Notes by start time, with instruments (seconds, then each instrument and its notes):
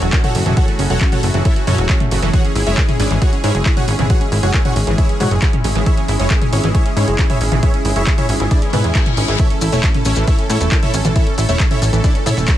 Already playing: analog synth pad F#3 C#4 E4 G#4 A4
0.02 analog synth bass E1, synth pluck F#3, supersaw synth F#4, closed hi-hat
0.13 synth pluck C#4, supersaw synth F#4, kick, clap, closed hi-hat
0.24 synth pluck A3, supersaw synth F#4 A4 C#5 F#5, closed hi-hat, mid tom
0.35 analog synth bass F#1, synth pluck A3, supersaw synth F#4, open hi-hat
0.46 analog synth bass F#1, synth pluck E3, supersaw synth F#4, closed hi-hat, mid tom
0.57 synth pluck E3, supersaw synth F#4 A4 C#5 F#5, kick, closed hi-hat
0.68 synth pluck A3, supersaw synth F#4, closed hi-hat
0.79 analog synth bass F#1, synth pluck C#4, supersaw synth F#4, open hi-hat
0.90 analog synth bass E1, synth pluck F#3, supersaw synth F#4 A4 C#5 F#5, closed hi-hat
1.01 synth pluck C#4, supersaw synth F#4, kick, clap, closed hi-hat
1.12 synth pluck A3, supersaw synth F#4 A4 C#5 F#5, closed hi-hat, mid tom
1.23 analog synth bass F#1, synth pluck A3, supersaw synth F#4, open hi-hat
1.34 analog synth bass F#1, synth pluck E3, supersaw synth F#4, closed hi-hat
1.45 supersaw synth E4 A4 C#5 E5, kick, closed hi-hat
1.56 synth pluck A3, supersaw synth F#4, closed hi-hat
1.67 analog synth bass F#2, supersaw synth C#4 F#4 A4 C#5, synth pluck C#4, open hi-hat, mid tom
1.78 analog synth bass E1, synth pluck F#3, supersaw synth F#4, closed hi-hat
1.89 synth pluck C#4, supersaw synth F#4, kick, clap, closed hi-hat
2.00 synth pluck A3, closed hi-hat, mid tom
2.11 analog synth bass F#1, synth pluck A3, supersaw synth F#4, open hi-hat
2.22 analog synth bass F#1, synth pluck E3, supersaw synth F#4, closed hi-hat
2.33 synth pluck E3, analog synth pad G#3 E4, supersaw synth F#4 G#4 C#5 F#5, kick, closed hi-hat
2.45 synth pluck C#4, supersaw synth G#4, closed hi-hat
2.56 analog synth bass G#1, synth pluck E4, supersaw synth G#4, open hi-hat
2.66 analog synth bass F#1, synth pluck G#3, supersaw synth E4 G#4 C#5 E5, closed hi-hat
2.78 synth pluck E4, supersaw synth G#4, kick, clap, closed hi-hat
2.89 synth pluck C#4, supersaw synth G#4, closed hi-hat, mid tom
3.00 analog synth bass G#1, synth pluck C#4, supersaw synth D4 E4 G#4 D5, open hi-hat
3.11 analog synth bass G#1, synth pluck E3, supersaw synth G#4, closed hi-hat
3.22 synth pluck E3, supersaw synth F#4 G#4 C#5 F#5, kick, closed hi-hat
3.33 synth pluck C#4, supersaw synth G#4, closed hi-hat
3.44 analog synth bass G#2, supersaw synth C#4 E4 G#4 C#5, synth pluck E4, open hi-hat
3.55 analog synth bass F#1, synth pluck G#3, supersaw synth G#4, closed hi-hat
3.66 synth pluck E4, supersaw synth G#4, kick, clap, closed hi-hat
3.77 synth pluck C#4, supersaw synth F#4 G#4 C#5 F#5, closed hi-hat, mid tom
3.88 analog synth bass G#1, synth pluck C#4, supersaw synth G#4, open hi-hat
3.99 analog synth bass G#1, synth pluck E3, supersaw synth G#4, closed hi-hat, mid tom
4.10 synth pluck E3, supersaw synth F#4 G#4 C#5 F#5, kick, closed hi-hat
4.21 synth pluck C#4, supersaw synth G#4, closed hi-hat
4.32 analog synth bass G#1, synth pluck E4, supersaw synth G#4, open hi-hat
4.43 analog synth bass F#1, synth pluck G#3, supersaw synth F#4 G#4 C#5 F#5, closed hi-hat
4.54 synth pluck E4, kick, clap, closed hi-hat
4.65 synth pluck C#4, supersaw synth F#4 G#4 C#5 F#5, closed hi-hat, mid tom
4.76 analog synth bass G#1, synth pluck C#4, supersaw synth G#4, open hi-hat
4.87 analog synth bass G#1, synth pluck E3, supersaw synth G#4, closed hi-hat
4.98 synth pluck E3, supersaw synth E4 G#4 C#5 E5, kick, closed hi-hat
5.09 synth pluck C#4, supersaw synth G#4, closed hi-hat
5.20 analog synth bass G#2, synth pluck E4, supersaw synth F#4 G#4 C#5 F#5, open hi-hat, mid tom
5.31 analog synth bass F#1, synth pluck G#3, supersaw synth G#4, closed hi-hat
5.42 synth pluck E4, kick, clap, closed hi-hat
5.53 synth pluck C#4, closed hi-hat, mid tom
5.64 analog synth bass G#1, synth pluck C#4, supersaw synth G#4, open hi-hat
5.75 analog synth bass G#1, synth pluck E3, supersaw synth G#4, closed hi-hat
5.86 synth pluck E3, supersaw synth E4 G#4 C#5 E5, kick, closed hi-hat
5.97 synth pluck C#4, supersaw synth G#4, closed hi-hat
6.08 analog synth bass G#1, synth pluck E4, supersaw synth G#4, open hi-hat
6.19 analog synth bass F#1, synth pluck G#3, supersaw synth C#4 E4 G#4 C#5, closed hi-hat
6.30 synth pluck E4, supersaw synth G#4, kick, clap, closed hi-hat
6.42 synth pluck C#4, supersaw synth G#4, closed hi-hat, mid tom
6.52 analog synth bass G#1, synth pluck C#4, supersaw synth C#4 E4 G#4 C#5, open hi-hat
6.64 analog synth bass G#1, synth pluck E3, supersaw synth G#4, closed hi-hat
6.75 synth pluck E3, supersaw synth E4 G#4 C#5 E5, kick, closed hi-hat
6.86 synth pluck C#4, supersaw synth G#4, closed hi-hat
6.97 analog synth bass G#2, supersaw synth C#4 E4 G#4 C#5, synth pluck E4, open hi-hat
7.08 analog synth bass F#1, synth pluck G#3, supersaw synth G#4, closed hi-hat
7.19 synth pluck E4, supersaw synth G#4, kick, clap, closed hi-hat
7.30 synth pluck C#4, supersaw synth E4 G#4 C#5 E5, closed hi-hat, mid tom
7.41 analog synth bass G#1, synth pluck C#4, supersaw synth G#4, open hi-hat
7.52 analog synth bass G#1, synth pluck E3, supersaw synth G#4, closed hi-hat, mid tom
7.63 synth pluck E3, supersaw synth E4 G#4 C#5 E5, kick, closed hi-hat
7.74 synth pluck C#4, supersaw synth G#4, closed hi-hat
7.85 analog synth bass G#1, synth pluck E4, supersaw synth G#4, open hi-hat
7.96 analog synth bass F#1, synth pluck G#3, supersaw synth E4 G#4 C#5 E5, closed hi-hat
8.07 synth pluck E4, supersaw synth G#4, kick, clap, closed hi-hat
8.18 synth pluck C#4, supersaw synth E4 G#4 C#5 E5, closed hi-hat, mid tom
8.29 analog synth bass G#1, synth pluck C#4, supersaw synth G#4, open hi-hat
8.40 analog synth bass G#1, synth pluck E3, supersaw synth G#4, closed hi-hat
8.51 synth pluck E3, supersaw synth D4 E4 G#4 D5, kick, closed hi-hat, reverse cymbal
8.62 synth pluck C#4, supersaw synth G#4, closed hi-hat
8.73 analog synth bass G#2, supersaw synth B3 E4 G#4 B4, synth pluck E4, open hi-hat, mid tom
8.84 analog synth bass E2, synth pluck G#3, supersaw synth G#4, closed hi-hat
8.95 synth pluck E4, supersaw synth G#4, kick, clap, closed hi-hat
9.06 synth pluck C#4, closed hi-hat, mid tom
9.17 analog synth bass G#1, synth pluck C#4, supersaw synth G#4, open hi-hat
9.28 analog synth bass G#1, synth pluck E3, supersaw synth G#4, closed hi-hat
9.39 synth pluck E3, analog synth pad A3 C#4, supersaw synth E4 A4 C#5 E5, kick, closed hi-hat, maracas
9.50 synth pluck C#4, supersaw synth A4, closed hi-hat
9.61 analog synth bass A1, synth pluck E4, supersaw synth A4, open hi-hat, maracas
9.72 analog synth bass E1, synth pluck A3, supersaw synth C#4 E4 A4 C#5, closed hi-hat, maracas
9.83 synth pluck E4, supersaw synth A4, kick, clap, closed hi-hat, maracas
9.95 synth pluck C#4, supersaw synth A4, closed hi-hat, mid tom
10.05 analog synth bass A1, synth pluck C#4, supersaw synth C#4 E4 A4 C#5, open hi-hat, maracas
10.15 analog synth bass A1, synth pluck E3, supersaw synth A4, closed hi-hat, maracas
10.27 synth pluck E3, supersaw synth E4 A4 C#5 E5, kick, closed hi-hat, maracas
10.39 synth pluck C#4, supersaw synth A4, closed hi-hat
10.50 analog synth bass A2, supersaw synth C#4 E4 A4 C#5, synth pluck E4, open hi-hat, maracas
10.61 analog synth bass E1, synth pluck A3, supersaw synth A4, closed hi-hat, maracas
10.72 synth pluck E4, supersaw synth A4, kick, clap, closed hi-hat, maracas
10.83 synth pluck C#4, supersaw synth E4 A4 C#5 E5, closed hi-hat, mid tom
10.94 analog synth bass A1, synth pluck C#4, supersaw synth A4, open hi-hat, maracas
11.05 analog synth bass A1, synth pluck E3, supersaw synth A4, closed hi-hat, mid tom, maracas
11.15 synth pluck E3, supersaw synth E4 A4 C#5 E5, kick, closed hi-hat, maracas
11.27 synth pluck C#4, supersaw synth A4, closed hi-hat
11.38 analog synth bass A1, synth pluck E4, supersaw synth A4, open hi-hat, maracas
11.49 analog synth bass E1, synth pluck A3, supersaw synth E4 A4 C#5 E5, closed hi-hat, maracas
11.60 synth pluck E4, supersaw synth A4, kick, clap, closed hi-hat, maracas
11.71 synth pluck C#4, supersaw synth E4 A4 C#5 E5, closed hi-hat, mid tom
11.82 analog synth bass A1, synth pluck C#4, supersaw synth A4, open hi-hat, maracas
11.93 analog synth bass A1, synth pluck E3, supersaw synth A4, closed hi-hat, maracas
12.04 synth pluck E3, supersaw synth D4 E4 A4 D5, kick, closed hi-hat, maracas
12.15 synth pluck C#4, supersaw synth A4, closed hi-hat
12.26 analog synth bass A2, synth pluck E4, supersaw synth E4 A4 C#5 E5, open hi-hat, mid tom, maracas
12.37 analog synth bass E1, synth pluck A3, supersaw synth A4, closed hi-hat, maracas
12.47 synth pluck E4, supersaw synth A4, kick, clap, closed hi-hat, maracas